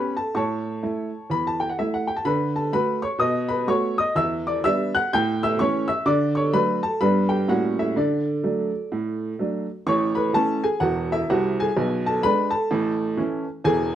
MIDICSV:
0, 0, Header, 1, 2, 480
1, 0, Start_track
1, 0, Key_signature, 2, "major"
1, 0, Tempo, 475059
1, 346, Time_signature, 4, 2, 24, 8
1, 9958, Key_signature, 3, "major"
1, 14095, End_track
2, 0, Start_track
2, 0, Title_t, "Upright piano"
2, 0, Program_c, 0, 0
2, 0, Note_on_c, 0, 59, 42
2, 0, Note_on_c, 0, 61, 44
2, 0, Note_on_c, 0, 67, 45
2, 0, Note_on_c, 0, 71, 61
2, 0, Note_on_c, 0, 83, 77
2, 137, Note_off_c, 0, 59, 0
2, 141, Note_off_c, 0, 61, 0
2, 142, Note_off_c, 0, 67, 0
2, 159, Note_off_c, 0, 71, 0
2, 169, Note_on_c, 0, 81, 61
2, 172, Note_off_c, 0, 83, 0
2, 185, Note_on_c, 0, 69, 45
2, 344, Note_off_c, 0, 69, 0
2, 348, Note_off_c, 0, 81, 0
2, 350, Note_on_c, 0, 45, 63
2, 351, Note_on_c, 0, 85, 71
2, 368, Note_on_c, 0, 81, 59
2, 373, Note_on_c, 0, 73, 56
2, 556, Control_c, 0, 64, 127
2, 757, Note_off_c, 0, 45, 0
2, 838, Control_c, 0, 64, 0
2, 841, Note_on_c, 0, 64, 44
2, 842, Note_on_c, 0, 57, 47
2, 1102, Note_off_c, 0, 64, 0
2, 1103, Note_off_c, 0, 57, 0
2, 1278, Note_off_c, 0, 81, 0
2, 1281, Note_off_c, 0, 73, 0
2, 1311, Note_off_c, 0, 85, 0
2, 1312, Note_on_c, 0, 40, 53
2, 1327, Note_on_c, 0, 83, 82
2, 1467, Note_off_c, 0, 83, 0
2, 1488, Note_on_c, 0, 81, 65
2, 1618, Note_on_c, 0, 79, 64
2, 1623, Note_off_c, 0, 81, 0
2, 1704, Note_off_c, 0, 79, 0
2, 1714, Note_on_c, 0, 78, 58
2, 1719, Note_off_c, 0, 40, 0
2, 1797, Note_off_c, 0, 78, 0
2, 1808, Note_on_c, 0, 76, 66
2, 1818, Note_on_c, 0, 57, 39
2, 1818, Note_on_c, 0, 64, 42
2, 1949, Note_off_c, 0, 76, 0
2, 1960, Note_on_c, 0, 78, 64
2, 2074, Note_off_c, 0, 57, 0
2, 2075, Note_off_c, 0, 64, 0
2, 2098, Note_on_c, 0, 79, 59
2, 2100, Note_off_c, 0, 78, 0
2, 2184, Note_off_c, 0, 79, 0
2, 2188, Note_on_c, 0, 81, 56
2, 2275, Note_off_c, 0, 81, 0
2, 2275, Note_on_c, 0, 50, 69
2, 2275, Note_on_c, 0, 83, 82
2, 2287, Note_on_c, 0, 71, 59
2, 2486, Control_c, 0, 64, 127
2, 2558, Note_off_c, 0, 71, 0
2, 2573, Note_off_c, 0, 83, 0
2, 2585, Note_on_c, 0, 81, 53
2, 2598, Note_on_c, 0, 69, 39
2, 2682, Note_off_c, 0, 50, 0
2, 2754, Note_off_c, 0, 69, 0
2, 2757, Note_on_c, 0, 57, 50
2, 2759, Note_off_c, 0, 81, 0
2, 2760, Control_c, 0, 64, 0
2, 2762, Note_on_c, 0, 83, 88
2, 2765, Note_on_c, 0, 66, 49
2, 2765, Note_on_c, 0, 71, 64
2, 3020, Note_off_c, 0, 57, 0
2, 3026, Note_off_c, 0, 66, 0
2, 3038, Note_off_c, 0, 71, 0
2, 3055, Note_on_c, 0, 85, 73
2, 3057, Note_off_c, 0, 83, 0
2, 3059, Note_on_c, 0, 73, 55
2, 3218, Note_on_c, 0, 47, 74
2, 3224, Note_off_c, 0, 73, 0
2, 3229, Note_on_c, 0, 87, 89
2, 3234, Note_off_c, 0, 85, 0
2, 3242, Note_on_c, 0, 75, 65
2, 3423, Control_c, 0, 64, 127
2, 3517, Note_off_c, 0, 75, 0
2, 3522, Note_on_c, 0, 83, 76
2, 3531, Note_off_c, 0, 87, 0
2, 3532, Note_on_c, 0, 71, 56
2, 3633, Note_off_c, 0, 47, 0
2, 3701, Note_off_c, 0, 71, 0
2, 3708, Note_off_c, 0, 83, 0
2, 3710, Note_on_c, 0, 59, 38
2, 3713, Note_on_c, 0, 57, 47
2, 3720, Note_on_c, 0, 85, 88
2, 3721, Note_on_c, 0, 66, 51
2, 3724, Control_c, 0, 64, 0
2, 3729, Note_on_c, 0, 73, 65
2, 3976, Note_off_c, 0, 59, 0
2, 3978, Note_off_c, 0, 57, 0
2, 3983, Note_off_c, 0, 66, 0
2, 4001, Note_off_c, 0, 73, 0
2, 4017, Note_off_c, 0, 85, 0
2, 4022, Note_on_c, 0, 87, 82
2, 4038, Note_on_c, 0, 75, 60
2, 4194, Note_on_c, 0, 40, 73
2, 4195, Note_off_c, 0, 75, 0
2, 4199, Note_off_c, 0, 87, 0
2, 4203, Note_on_c, 0, 88, 93
2, 4213, Note_on_c, 0, 76, 68
2, 4400, Control_c, 0, 64, 127
2, 4483, Note_off_c, 0, 76, 0
2, 4499, Note_off_c, 0, 88, 0
2, 4514, Note_on_c, 0, 86, 72
2, 4520, Note_on_c, 0, 74, 59
2, 4603, Note_off_c, 0, 40, 0
2, 4677, Note_off_c, 0, 74, 0
2, 4685, Note_off_c, 0, 86, 0
2, 4688, Note_on_c, 0, 88, 103
2, 4689, Control_c, 0, 64, 0
2, 4691, Note_on_c, 0, 55, 52
2, 4693, Note_on_c, 0, 59, 50
2, 4698, Note_on_c, 0, 62, 62
2, 4700, Note_on_c, 0, 76, 84
2, 4951, Note_off_c, 0, 55, 0
2, 4952, Note_off_c, 0, 59, 0
2, 4957, Note_off_c, 0, 62, 0
2, 4968, Note_off_c, 0, 76, 0
2, 4982, Note_off_c, 0, 88, 0
2, 4996, Note_on_c, 0, 90, 97
2, 5004, Note_on_c, 0, 78, 72
2, 5159, Note_off_c, 0, 78, 0
2, 5167, Note_off_c, 0, 90, 0
2, 5186, Note_on_c, 0, 91, 102
2, 5190, Note_on_c, 0, 45, 82
2, 5198, Note_on_c, 0, 79, 81
2, 5350, Control_c, 0, 64, 127
2, 5458, Note_off_c, 0, 79, 0
2, 5471, Note_off_c, 0, 91, 0
2, 5488, Note_on_c, 0, 88, 94
2, 5497, Note_on_c, 0, 76, 72
2, 5584, Note_off_c, 0, 45, 0
2, 5646, Note_off_c, 0, 76, 0
2, 5650, Note_on_c, 0, 85, 92
2, 5651, Control_c, 0, 64, 0
2, 5653, Note_off_c, 0, 88, 0
2, 5655, Note_on_c, 0, 52, 53
2, 5662, Note_on_c, 0, 57, 43
2, 5663, Note_on_c, 0, 61, 60
2, 5668, Note_on_c, 0, 73, 72
2, 5915, Note_off_c, 0, 52, 0
2, 5919, Note_off_c, 0, 57, 0
2, 5920, Note_off_c, 0, 61, 0
2, 5932, Note_off_c, 0, 73, 0
2, 5939, Note_on_c, 0, 88, 83
2, 5943, Note_off_c, 0, 85, 0
2, 5951, Note_on_c, 0, 76, 65
2, 6113, Note_off_c, 0, 76, 0
2, 6119, Note_off_c, 0, 88, 0
2, 6119, Note_on_c, 0, 50, 80
2, 6122, Note_on_c, 0, 86, 90
2, 6135, Note_on_c, 0, 74, 69
2, 6332, Control_c, 0, 64, 127
2, 6406, Note_off_c, 0, 74, 0
2, 6415, Note_on_c, 0, 85, 68
2, 6419, Note_off_c, 0, 86, 0
2, 6431, Note_on_c, 0, 73, 62
2, 6527, Note_off_c, 0, 50, 0
2, 6593, Note_off_c, 0, 73, 0
2, 6596, Note_on_c, 0, 54, 57
2, 6597, Note_off_c, 0, 85, 0
2, 6599, Note_on_c, 0, 57, 52
2, 6601, Note_on_c, 0, 62, 52
2, 6602, Note_on_c, 0, 83, 98
2, 6610, Note_on_c, 0, 71, 71
2, 6613, Control_c, 0, 64, 0
2, 6861, Note_off_c, 0, 54, 0
2, 6863, Note_off_c, 0, 57, 0
2, 6865, Note_off_c, 0, 62, 0
2, 6883, Note_off_c, 0, 71, 0
2, 6900, Note_off_c, 0, 83, 0
2, 6902, Note_on_c, 0, 81, 77
2, 6923, Note_on_c, 0, 69, 61
2, 7080, Note_off_c, 0, 69, 0
2, 7080, Note_on_c, 0, 55, 42
2, 7081, Note_off_c, 0, 81, 0
2, 7082, Note_on_c, 0, 83, 91
2, 7086, Note_on_c, 0, 59, 46
2, 7088, Note_on_c, 0, 43, 67
2, 7094, Note_on_c, 0, 71, 60
2, 7096, Note_on_c, 0, 62, 44
2, 7290, Control_c, 0, 64, 127
2, 7344, Note_off_c, 0, 55, 0
2, 7348, Note_off_c, 0, 59, 0
2, 7355, Note_off_c, 0, 62, 0
2, 7366, Note_off_c, 0, 71, 0
2, 7367, Note_on_c, 0, 79, 70
2, 7368, Note_on_c, 0, 67, 59
2, 7380, Note_off_c, 0, 83, 0
2, 7492, Note_off_c, 0, 43, 0
2, 7541, Note_off_c, 0, 67, 0
2, 7553, Note_off_c, 0, 79, 0
2, 7559, Note_on_c, 0, 58, 40
2, 7560, Note_on_c, 0, 55, 39
2, 7562, Note_on_c, 0, 45, 67
2, 7563, Note_on_c, 0, 61, 43
2, 7569, Control_c, 0, 64, 0
2, 7569, Note_on_c, 0, 78, 74
2, 7574, Note_on_c, 0, 66, 61
2, 7756, Control_c, 0, 64, 127
2, 7823, Note_off_c, 0, 58, 0
2, 7824, Note_off_c, 0, 55, 0
2, 7826, Note_off_c, 0, 61, 0
2, 7845, Note_off_c, 0, 66, 0
2, 7864, Note_off_c, 0, 78, 0
2, 7872, Note_on_c, 0, 76, 64
2, 7880, Note_on_c, 0, 64, 47
2, 7969, Note_off_c, 0, 45, 0
2, 8038, Note_off_c, 0, 64, 0
2, 8042, Note_on_c, 0, 50, 59
2, 8046, Note_off_c, 0, 76, 0
2, 8049, Control_c, 0, 64, 0
2, 8051, Note_on_c, 0, 74, 62
2, 8062, Note_on_c, 0, 62, 46
2, 8062, Note_on_c, 0, 69, 48
2, 8249, Control_c, 0, 64, 127
2, 8449, Note_off_c, 0, 50, 0
2, 8513, Note_off_c, 0, 62, 0
2, 8521, Note_on_c, 0, 54, 41
2, 8528, Note_on_c, 0, 62, 42
2, 8530, Note_on_c, 0, 57, 40
2, 8534, Control_c, 0, 64, 0
2, 8785, Note_off_c, 0, 54, 0
2, 8789, Note_off_c, 0, 62, 0
2, 8791, Note_off_c, 0, 57, 0
2, 9011, Note_on_c, 0, 45, 58
2, 9414, Note_off_c, 0, 45, 0
2, 9449, Note_off_c, 0, 69, 0
2, 9485, Note_off_c, 0, 74, 0
2, 9488, Note_on_c, 0, 57, 36
2, 9490, Note_on_c, 0, 54, 40
2, 9499, Note_on_c, 0, 62, 43
2, 9749, Note_off_c, 0, 57, 0
2, 9750, Note_off_c, 0, 54, 0
2, 9757, Note_off_c, 0, 62, 0
2, 9970, Note_on_c, 0, 33, 66
2, 9970, Note_on_c, 0, 45, 68
2, 9971, Note_on_c, 0, 85, 91
2, 9988, Note_on_c, 0, 73, 72
2, 10186, Control_c, 0, 64, 127
2, 10252, Note_off_c, 0, 73, 0
2, 10258, Note_on_c, 0, 83, 72
2, 10263, Note_off_c, 0, 85, 0
2, 10271, Note_on_c, 0, 71, 55
2, 10372, Note_off_c, 0, 33, 0
2, 10372, Note_off_c, 0, 45, 0
2, 10432, Note_off_c, 0, 71, 0
2, 10438, Note_off_c, 0, 83, 0
2, 10441, Note_on_c, 0, 52, 47
2, 10447, Control_c, 0, 64, 0
2, 10447, Note_on_c, 0, 57, 50
2, 10451, Note_on_c, 0, 81, 100
2, 10456, Note_on_c, 0, 61, 51
2, 10461, Note_on_c, 0, 69, 77
2, 10703, Note_off_c, 0, 52, 0
2, 10708, Note_off_c, 0, 57, 0
2, 10714, Note_off_c, 0, 61, 0
2, 10728, Note_off_c, 0, 69, 0
2, 10743, Note_off_c, 0, 81, 0
2, 10745, Note_on_c, 0, 80, 74
2, 10751, Note_on_c, 0, 68, 56
2, 10912, Note_off_c, 0, 68, 0
2, 10912, Note_on_c, 0, 78, 89
2, 10914, Note_on_c, 0, 40, 65
2, 10918, Note_on_c, 0, 28, 67
2, 10921, Note_off_c, 0, 80, 0
2, 10933, Note_on_c, 0, 66, 59
2, 11203, Note_off_c, 0, 66, 0
2, 11213, Note_off_c, 0, 78, 0
2, 11237, Note_on_c, 0, 76, 80
2, 11242, Note_on_c, 0, 64, 57
2, 11322, Note_off_c, 0, 40, 0
2, 11325, Note_off_c, 0, 28, 0
2, 11397, Note_off_c, 0, 64, 0
2, 11406, Note_off_c, 0, 76, 0
2, 11414, Note_on_c, 0, 48, 65
2, 11416, Note_on_c, 0, 36, 67
2, 11417, Note_on_c, 0, 78, 79
2, 11427, Note_on_c, 0, 66, 65
2, 11690, Note_off_c, 0, 66, 0
2, 11704, Note_off_c, 0, 78, 0
2, 11722, Note_on_c, 0, 80, 82
2, 11747, Note_on_c, 0, 68, 55
2, 11790, Note_off_c, 0, 48, 0
2, 11791, Note_off_c, 0, 36, 0
2, 11890, Note_on_c, 0, 35, 64
2, 11892, Note_on_c, 0, 47, 74
2, 12102, Control_c, 0, 64, 127
2, 12168, Note_off_c, 0, 68, 0
2, 12187, Note_off_c, 0, 80, 0
2, 12190, Note_on_c, 0, 81, 79
2, 12193, Note_on_c, 0, 69, 52
2, 12290, Note_off_c, 0, 35, 0
2, 12292, Note_off_c, 0, 47, 0
2, 12351, Note_off_c, 0, 69, 0
2, 12360, Note_on_c, 0, 83, 111
2, 12361, Note_off_c, 0, 81, 0
2, 12363, Control_c, 0, 64, 0
2, 12363, Note_on_c, 0, 56, 53
2, 12366, Note_on_c, 0, 62, 57
2, 12371, Note_on_c, 0, 71, 74
2, 12624, Note_off_c, 0, 56, 0
2, 12626, Note_off_c, 0, 62, 0
2, 12635, Note_on_c, 0, 81, 77
2, 12640, Note_off_c, 0, 71, 0
2, 12655, Note_off_c, 0, 83, 0
2, 12655, Note_on_c, 0, 69, 61
2, 12840, Note_on_c, 0, 33, 68
2, 12840, Note_on_c, 0, 45, 81
2, 13005, Control_c, 0, 64, 127
2, 13244, Note_off_c, 0, 33, 0
2, 13244, Note_off_c, 0, 45, 0
2, 13308, Note_on_c, 0, 61, 50
2, 13310, Note_on_c, 0, 52, 54
2, 13321, Note_on_c, 0, 64, 50
2, 13326, Control_c, 0, 64, 0
2, 13571, Note_off_c, 0, 69, 0
2, 13572, Note_off_c, 0, 61, 0
2, 13574, Note_off_c, 0, 52, 0
2, 13581, Note_off_c, 0, 64, 0
2, 13601, Note_off_c, 0, 81, 0
2, 13786, Note_on_c, 0, 40, 85
2, 13787, Note_on_c, 0, 28, 71
2, 13791, Note_on_c, 0, 80, 93
2, 13806, Note_on_c, 0, 68, 76
2, 14007, Control_c, 0, 64, 127
2, 14076, Note_off_c, 0, 68, 0
2, 14089, Note_off_c, 0, 80, 0
2, 14095, Note_off_c, 0, 28, 0
2, 14095, Note_off_c, 0, 40, 0
2, 14095, End_track
0, 0, End_of_file